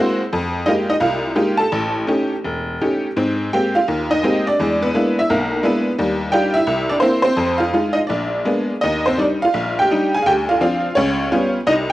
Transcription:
honky-tonk piano
Already playing: G#3 A#3 C4 E4 F#4 C5
0.33 F2
0.66 G#3 A#3 D#4 F4 G4 D#5
0.90 D#4 D#5
1.00 C2 F4 F5
1.35 G#3 A#3 D#4 F4 G4
1.57 A4 A5
1.72 A1
2.07 A3 C#4 D#4 G4
2.45 E1
2.82 A3 C#4 D#4 G4
3.17 G#2 C4
3.53 G#3 A#3 C4 G4 G5
3.75 F4 F5
3.88 D#2
4.11 D#4 D#5
4.23 G#3 A#3 C4 G4
4.47 D4 D5
4.60 E2 G#3
4.82 B3 B4
4.95 G#3 A#3 D4 E4
5.19 E4 E5
5.30 B1 A#3 A#4
5.63 G#3 A#3 B3 D4 E4 B4
5.99 D#2 G3
6.32 G3 D4 D#4 F4 G4 G5
6.54 E4 E5
6.67 C2
6.89 D4 D5
7.00 A#3 C4 E4 C5
7.22 C4 C5
7.37 F2
7.58 F4 F5
7.73 G#3 D#4 F4
7.93 D#4 D#5
8.07 A#1 D4 D5
8.45 G#3 A#3 B3 D4
8.81 D#2 D#4 D#5
9.06 C4 C5
9.17 G3 D4 D#4 D5
9.22 D4
9.42 F4 F5
9.54 A#1
9.79 G4 G5
9.91 G3 D4 D#4
10.14 G#4 G#5
10.22 D2 F5 G5
10.28 G4
10.49 F4 F5
10.61 F3 C4 D4 F4 F5
10.95 C#2 C#4 C#5
11.32 G3 B3 C#4 F4
11.67 C2 D#4 D#5

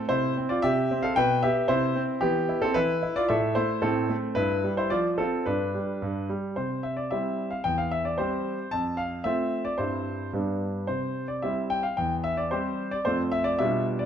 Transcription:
grand piano
0.09 C3 E4 C5
0.37 C4
0.49 F4 D5
0.62 C3 G4 E5
0.91 C4
1.03 A4 F5
1.16 B2 B4 G5
1.43 B3 G4 E5
1.68 C3 E4 C5
1.96 C4
2.21 E3 B3 G4
2.49 E4
2.62 C4 A4
2.74 E3 E4 B4
3.03 E4
3.16 F4 D5
3.28 A2 A4 E5
3.55 A3 E4 C5
3.82 A2 C4 A4
4.09 A3
4.35 G2 E4 B4
4.64 G3
4.77 E4 C5
4.90 F3 F4 D5
5.18 C4 F4 A4
5.46 G2 D4 B4
5.75 G3
6.02 G2
6.29 G3
6.56 C3 C5
6.83 E5
6.97 D5
7.11 G3 C4 E4 E5
7.51 F5
7.64 E2 G5
7.78 F5
7.91 E5
8.05 D5
8.18 G3 C4 G4 C5
8.71 F2 A5
8.97 F5
9.24 A3 C4 F4 E5
9.65 D5
9.78 G2 G3 C4 E4 C5
10.33 G2 G3 B3 D4
10.87 C3 C5
11.28 D5
11.42 G3 C4 E4 E5
11.70 G5
11.83 F5
11.97 E2 G5
12.24 E5
12.37 D5
12.51 G3 C4 G4 C5
12.91 D5
13.05 F2 A3 C4 F4 C5
13.32 E5
13.44 D5
13.59 B2 G3 D4 F4 E5
13.99 D5

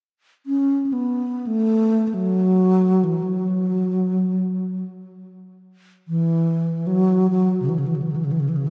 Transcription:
bass flute
0.46 C#4
0.85 C#4
0.93 B3
1.47 A3
2.08 A3
2.14 F#3
3.04 E3
3.23 F#3
6.08 E3
6.87 F#3
7.30 F#3
7.62 C#3
7.69 E3
7.78 C#3
7.87 E3
7.95 C#3
8.02 E3
8.11 C#3
8.16 E3
8.25 C#3
8.32 E3
8.40 C#3
8.49 E3
8.56 C#3

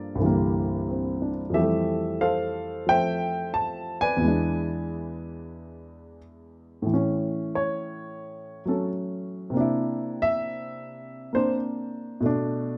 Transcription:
grand piano
Already playing: G2 F3 G3 A#3 F4 A4 A#4 D5
0.15 C2 G2
0.19 D3 E3
0.24 G3 A#3
0.88 C4
1.22 D4
1.50 F2 E3 A4
1.54 G3 G4 E5
1.61 A3
2.21 A4 C5 F5
2.87 F3 A3 C5 E5 G5
3.54 A5
4.01 B4 D5 G#5
4.17 E2
4.21 E3 G#3
4.28 D4
6.82 A2 E3
6.94 C#4
7.55 C#5
8.65 F#3 A3 C#4 A4
9.50 C3 A#3
9.57 D4 E4
10.22 E5
11.33 A#3 C4 D4 C5
12.21 B2 A3
12.26 D4

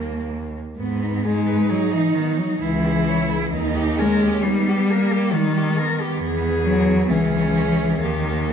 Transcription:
cello
Already playing: D#2 A#3
0.78 G#2 B3
1.02 D#4
1.23 G#3 D#4 G#4
1.47 B4
1.69 F#3 G#4
1.93 E3 D#4
2.14 D#3 B3
2.37 F#3 D#4
2.60 C#2 E3 E4
2.85 G#4
3.08 C#5
3.29 G#4
3.51 D#2 D#4
3.75 G4
3.96 G#3 C#4 A#4
4.22 G4
4.42 G3 B3 D#4
4.68 G4
4.91 A#3 A#4
5.12 G4
5.32 D#3 G3
5.36 D#4
5.56 G4
5.78 B3 A#4
6.01 G4
6.21 E2 G#4
6.65 F#3
7.08 C#2 E3 C#4 G#4
8.01 D#2 D#3 A#3 G4
8.50 A#4

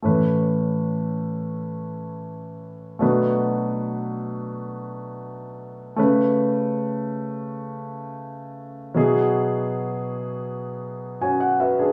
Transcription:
grand piano
0.02 A2 E3 A3 C#4 B4
2.99 B2 F#3 A3 D4 B4
5.96 C#3 A3 C#4 B4
8.94 B2 F#3 E4 G#4
11.21 C#4 F#4 G#5
11.40 F#5
11.60 F#4 B4 E5
11.79 D4 G#4

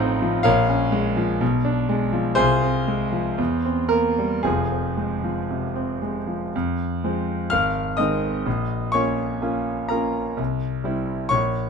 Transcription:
grand piano
Already playing: A1 A2 F3 D#4 F4 A4 C5 D#5 F#5
0.00 C4
0.22 F3
0.43 A#1 A#4 C#5 F5
0.69 C#4
0.92 G#3
1.17 F3
1.41 B1
1.65 D4
1.89 G#3
2.13 F3
2.35 C2 F4 G#4 C5
2.62 C4
2.88 G#3
3.12 F3
3.38 E2
3.65 C4
3.89 A#3 A#4
4.18 G3
4.43 F1 F2 C4 F4 G#4
4.72 C4
4.97 G#3
5.24 F3
5.50 C3
5.76 C4
6.02 G#3
6.27 F3
6.56 F2
7.04 F3 G#3 C4
7.50 G#1 F5 F6
7.97 D#3 G#3 C4 D#5 D#6
8.46 A#1
8.92 A#3 C#4 F4 C#5 C#6
9.42 A#3 C#4 F4
9.89 A#3 C#4 F4 A#4 A#5
10.37 C2
10.84 G3 C4 E4
11.29 A#1 C#5 C#6

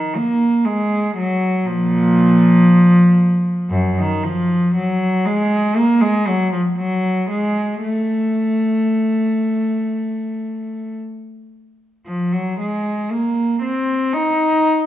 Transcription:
cello
Already playing: D#3
0.16 A#3
0.65 G#3
1.17 F#3
1.66 A#2 F3
3.70 F#2
3.98 D#3
4.24 F3
4.75 F#3
5.25 G#3
5.77 A#3
6.01 G#3
6.27 F#3
6.52 F3
6.77 F#3
7.30 G#3
7.83 A3
12.06 F3
12.32 F#3
12.60 G#3
13.11 A#3
13.62 C4
14.13 D#4

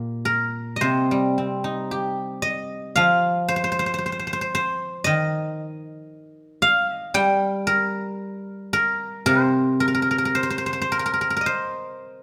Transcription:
guzheng
Already playing: A#2 A#4 F5
0.25 A#4
0.76 D#5
0.81 C3 C5
1.11 G3
1.38 C4
1.64 D#4
1.91 G4
2.42 D#5
2.96 F3 F5
3.48 C5
3.56 C5
3.64 C5
3.72 C5
3.79 C5
3.86 C5
3.94 C5
3.98 C5
4.06 C5
4.12 C5
4.19 C5
4.27 C5
4.33 C5
4.41 C5
4.55 C5
5.04 D#3 D#5
6.62 F5
6.94 D#5
7.14 G3 G5
7.67 A#4
8.73 A#4
9.26 C3 C5
9.80 A#4
9.88 A#4
9.95 A#4
10.02 A#4
10.11 A#4
10.18 A#4
10.25 A#4
10.35 C5
10.43 C5
10.50 C5
10.58 C5
10.66 C5
10.73 C5
10.82 C5
10.92 A#4
10.99 A#4
11.06 A#4
11.14 A#4
11.21 A#4
11.30 A#4
11.37 A#4
11.41 D#5
11.46 C5

